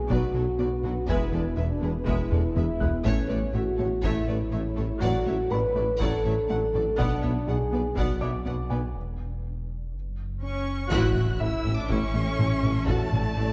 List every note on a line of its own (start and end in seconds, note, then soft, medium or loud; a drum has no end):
0.00 1.10 B1 medium
0.00 3.05 B3 medium
0.00 1.08 D4 medium
0.00 1.08 F#4 medium
0.00 3.05 B4 medium
0.09 0.20 B1 medium
0.09 0.18 B1 medium
0.09 0.17 B2 medium
0.09 0.25 B2 medium
0.09 0.33 F#3 medium
0.09 1.08 F#4 medium
0.09 0.33 B4 medium
0.09 0.33 D5 medium
0.09 taiko medium
0.34 0.43 B1 soft
0.34 0.45 B1 soft
0.34 0.42 B2 soft
0.34 0.49 B2 medium
0.34 0.43 F#3 medium
0.34 0.43 A4 medium
0.34 0.43 C#5 soft
0.58 0.69 B1 soft
0.58 0.68 B1 soft
0.58 0.66 B2 medium
0.58 0.68 F#3 soft
0.58 0.74 B3 medium
0.58 0.67 B4 medium
0.58 0.68 D5 medium
0.83 0.92 B1 soft
0.83 0.94 B1 soft
0.83 0.91 B2 soft
0.83 0.98 B2 medium
0.83 0.92 F#3 medium
0.83 0.92 F#4 medium
0.83 0.92 B4 soft
1.06 3.07 E1 medium
1.06 1.18 E1 medium
1.06 1.17 E1 medium
1.06 1.15 E2 medium
1.06 1.23 E2 medium
1.06 1.31 G#3 medium
1.06 5.01 E4 medium
1.06 1.57 E4 medium
1.06 3.05 G#4 medium
1.06 1.31 B4 medium
1.06 1.31 E5 medium
1.06 2.53 G#5 soft
1.06 2.53 G#6 soft
1.06 taiko medium
1.32 1.41 E1 soft
1.32 1.43 E1 medium
1.32 1.40 E2 soft
1.32 1.47 E3 medium
1.32 1.41 G#3 soft
1.32 1.41 A4 soft
1.32 1.42 D5 medium
1.57 1.67 E1 medium
1.57 1.66 E1 medium
1.57 1.65 E2 soft
1.57 1.72 E2 medium
1.57 1.65 G#3 soft
1.57 1.92 D4 medium
1.57 1.65 B4 medium
1.57 1.66 E5 medium
1.81 1.90 E1 soft
1.81 1.92 E1 medium
1.81 1.89 E2 medium
1.81 1.97 E3 medium
1.81 1.90 G#3 soft
1.81 1.90 G#4 medium
1.81 1.91 B4 medium
2.06 2.14 E1 medium
2.06 2.17 E1 medium
2.06 2.21 E2 medium
2.06 2.15 E2 medium
2.06 2.29 G#3 medium
2.06 3.03 E4 loud
2.06 2.30 B4 medium
2.06 2.30 E5 medium
2.06 taiko medium
2.31 2.40 E1 medium
2.31 2.42 E1 soft
2.31 2.39 E2 medium
2.31 2.46 E2 medium
2.31 2.39 G#3 medium
2.31 2.39 A4 medium
2.31 2.40 D5 soft
2.31 taiko low-mid medium
2.55 2.66 E1 medium
2.55 2.64 E1 medium
2.55 2.63 E2 medium
2.55 2.71 E3 medium
2.55 2.63 G#3 medium
2.55 2.64 B4 medium
2.55 2.64 E5 medium
2.55 taiko low-mid medium
2.80 2.90 E1 medium
2.80 2.89 E1 soft
2.80 2.88 E2 medium
2.80 2.95 E2 medium
2.80 2.89 G#3 medium
2.80 2.89 G#4 medium
2.80 2.89 B4 medium
2.80 4.24 F#6 soft
2.80 taiko low medium
3.04 3.14 A1 medium
3.04 3.13 A1 medium
3.04 7.00 A1 medium
3.04 3.20 A2 medium
3.04 3.13 A2 medium
3.04 5.02 A3 medium
3.04 3.28 A3 medium
3.04 3.54 C#4 medium
3.04 6.98 A4 medium
3.04 3.28 C#5 medium
3.04 5.02 C#5 medium
3.04 3.28 E5 medium
3.04 taiko loud
3.28 3.37 A1 soft
3.28 3.40 A1 medium
3.28 3.37 A2 medium
3.28 3.45 A3 medium
3.28 3.38 A3 soft
3.28 3.36 B4 medium
3.28 3.38 D5 medium
3.53 3.62 A1 medium
3.53 3.64 A1 medium
3.53 3.62 A2 medium
3.53 3.69 A2 medium
3.53 3.63 A3 medium
3.53 4.02 F#4 loud
3.53 3.61 C#5 soft
3.53 3.63 E5 medium
3.77 3.87 A1 medium
3.77 3.89 A1 medium
3.77 3.86 A2 medium
3.77 3.94 A3 medium
3.77 3.88 A3 soft
3.77 3.85 A4 medium
3.77 3.87 C#5 medium
4.02 4.12 A1 medium
4.02 4.14 A1 medium
4.02 4.11 A2 medium
4.02 4.18 A2 medium
4.02 4.27 A3 medium
4.02 5.02 E4 medium
4.02 4.26 C#5 medium
4.02 4.26 E5 medium
4.02 taiko medium
4.28 4.38 A1 medium
4.28 4.36 A1 medium
4.28 4.36 A2 soft
4.28 4.43 A2 medium
4.28 4.37 A3 medium
4.28 4.36 B4 medium
4.28 4.37 D5 medium
4.51 4.61 A1 medium
4.51 4.63 A1 medium
4.51 4.60 A2 medium
4.51 4.61 A3 medium
4.51 4.68 A3 medium
4.51 4.59 C#5 medium
4.51 4.61 E5 medium
4.76 4.87 A1 soft
4.76 4.86 A1 medium
4.76 4.85 A2 medium
4.76 4.92 A2 medium
4.76 4.85 A3 medium
4.76 4.84 A4 medium
4.76 4.86 C#5 medium
5.01 5.12 A1 medium
5.01 5.10 A1 medium
5.01 5.10 A2 medium
5.01 5.17 A2 medium
5.01 8.95 F#3 medium
5.01 5.25 F#3 medium
5.01 8.95 D4 medium
5.01 5.51 F#4 medium
5.01 8.95 D5 medium
5.01 5.24 D5 medium
5.01 5.25 F#5 medium
5.01 taiko medium
5.26 5.35 A1 soft
5.26 5.37 A1 medium
5.26 5.34 A2 medium
5.26 5.35 F#3 soft
5.26 5.41 A3 medium
5.26 5.34 C#5 soft
5.26 5.35 E5 medium
5.51 5.61 A1 medium
5.51 5.59 A1 medium
5.51 5.59 A2 medium
5.51 5.66 A2 medium
5.51 5.60 F#3 medium
5.51 6.00 B4 loud
5.51 5.60 D5 medium
5.51 5.59 F#5 medium
5.51 6.95 B5 soft
5.75 5.84 A1 medium
5.75 5.86 A1 medium
5.75 5.83 A2 medium
5.75 5.84 F#3 medium
5.75 5.91 A3 medium
5.75 5.84 A4 medium
5.75 5.84 D5 soft
6.00 6.10 A1 medium
6.00 6.08 A1 medium
6.00 6.08 A2 medium
6.00 6.15 A2 medium
6.00 6.23 F#3 medium
6.00 6.99 A4 medium
6.00 6.23 D5 medium
6.00 6.23 F#5 medium
6.00 taiko medium
6.25 6.35 A1 medium
6.25 6.33 A1 soft
6.25 6.33 A2 soft
6.25 6.40 A2 medium
6.25 6.34 F#3 medium
6.25 6.33 C#5 medium
6.25 6.33 E5 medium
6.49 6.57 A1 medium
6.49 6.60 A1 medium
6.49 6.57 A2 medium
6.49 6.59 F#3 medium
6.49 6.65 A3 medium
6.49 6.57 D5 medium
6.49 6.57 F#5 medium
6.73 6.82 A1 medium
6.73 6.84 A1 medium
6.73 6.82 A2 soft
6.73 6.89 A2 medium
6.73 6.83 F#3 medium
6.73 6.81 A4 medium
6.73 6.83 D5 medium
6.98 7.07 B1 medium
6.98 8.97 B1 medium
6.98 7.09 B1 medium
6.98 7.07 B2 medium
6.98 7.14 B2 medium
6.98 7.22 B3 medium
6.98 7.47 D4 medium
6.98 8.96 B4 medium
6.98 7.21 D5 medium
6.98 7.22 F#5 medium
6.98 taiko medium
7.22 7.31 B1 soft
7.22 7.33 B1 medium
7.22 7.31 B2 soft
7.22 7.31 B3 soft
7.22 7.38 B3 medium
7.22 7.30 C#5 soft
7.22 7.32 E5 medium
7.22 taiko low soft
7.47 7.55 B1 medium
7.47 7.58 B1 medium
7.47 7.56 B2 medium
7.47 7.63 B2 medium
7.47 7.55 B3 soft
7.47 7.97 G#4 medium
7.47 7.55 D5 medium
7.47 7.57 F#5 medium
7.72 7.80 B1 soft
7.72 7.83 B1 soft
7.72 7.80 B2 medium
7.72 7.80 B3 soft
7.72 7.87 B3 medium
7.72 7.81 B4 medium
7.72 7.81 D5 medium
7.96 8.05 B1 medium
7.96 8.07 B1 medium
7.96 8.04 B2 medium
7.96 8.12 B2 medium
7.96 8.20 B3 medium
7.96 8.96 F#4 medium
7.96 8.19 D5 medium
7.96 8.20 F#5 medium
7.96 taiko medium
8.20 8.29 B1 soft
8.20 8.32 B1 medium
8.20 8.29 B2 soft
8.20 8.36 B2 medium
8.20 8.30 B3 medium
8.20 8.28 C#5 medium
8.20 8.91 D5 soft
8.20 8.31 E5 soft
8.20 8.91 D6 medium
8.45 8.53 B1 soft
8.45 8.57 B1 soft
8.45 8.54 B2 medium
8.45 8.60 B3 medium
8.45 8.54 B3 medium
8.45 8.54 D5 medium
8.45 8.53 F#5 medium
8.45 taiko low medium
8.70 8.78 B1 medium
8.70 8.81 B1 soft
8.70 8.78 B2 soft
8.70 8.85 B2 medium
8.70 8.78 B3 medium
8.70 8.79 B4 medium
8.70 8.79 D5 soft
8.70 8.93 G#5 soft
8.95 9.95 E1 medium
9.94 10.91 F#1 medium
10.42 10.88 C#4 medium
10.42 10.89 C#6 medium
10.90 11.14 A1 medium
10.90 13.53 A1 medium
10.90 11.06 A2 loud
10.90 11.15 A2 medium
10.90 12.84 E3 loud
10.90 12.84 C#4 loud
10.90 11.14 E4 medium
10.90 11.38 F#4 medium
10.90 13.53 A4 medium
10.90 12.84 C#5 loud
10.90 12.84 E5 medium
10.90 11.38 F#6 medium
10.90 taiko medium
10.90 impact medium
11.15 11.23 A1 soft
11.15 11.26 A1 soft
11.15 11.24 A2 soft
11.15 11.31 A2 medium
11.15 11.24 C#4 soft
11.15 taiko mid soft
11.39 11.48 A1 medium
11.39 11.51 A1 medium
11.39 11.48 A2 medium
11.39 11.55 A2 medium
11.39 11.47 A3 soft
11.39 12.84 E4 soft
11.39 11.77 E4 medium
11.39 11.78 E4 medium
11.39 12.84 E5 medium
11.39 11.78 E6 medium
11.64 11.72 A1 medium
11.64 11.76 A1 medium
11.64 11.80 A2 medium
11.64 11.73 A2 medium
11.64 11.72 C#4 medium
11.77 11.89 D4 medium
11.77 11.91 D4 medium
11.77 11.91 D6 medium
11.89 11.97 A1 medium
11.89 12.00 A1 medium
11.89 12.05 A2 medium
11.89 11.98 A2 medium
11.89 12.88 C#4 medium
11.89 12.89 C#4 medium
11.89 12.12 E4 medium
11.89 12.89 C#6 medium
11.89 taiko medium
12.14 12.22 A1 medium
12.14 12.25 A1 soft
12.14 12.22 A2 soft
12.14 12.29 A3 medium
12.14 12.22 C#4 medium
12.37 12.46 A1 medium
12.37 12.49 A1 medium
12.37 12.54 A2 medium
12.37 12.47 A2 medium
12.37 12.45 A3 medium
12.37 taiko mid medium
12.63 12.71 A1 medium
12.63 12.74 A1 medium
12.63 12.78 A2 medium
12.63 12.71 A2 soft
12.63 12.71 C#4 medium
12.63 taiko mid soft
12.86 12.95 A1 medium
12.86 12.98 A1 medium
12.86 12.95 A2 medium
12.86 13.03 A2 loud
12.86 13.53 F#3 medium
12.86 13.53 A3 medium
12.86 13.53 D4 medium
12.86 13.10 F#4 medium
12.86 13.53 A4 soft
12.86 13.53 D5 medium
12.86 13.53 F#5 medium
12.86 13.53 A5 medium
12.86 taiko loud
13.12 13.20 A1 soft
13.12 13.23 A1 medium
13.12 13.27 A2 medium
13.12 13.20 A2 medium
13.12 13.20 D4 soft
13.12 taiko mid soft
13.36 13.45 A1 soft
13.36 13.47 A1 medium
13.36 13.52 A2 medium
13.36 13.45 A2 medium
13.36 13.44 A3 medium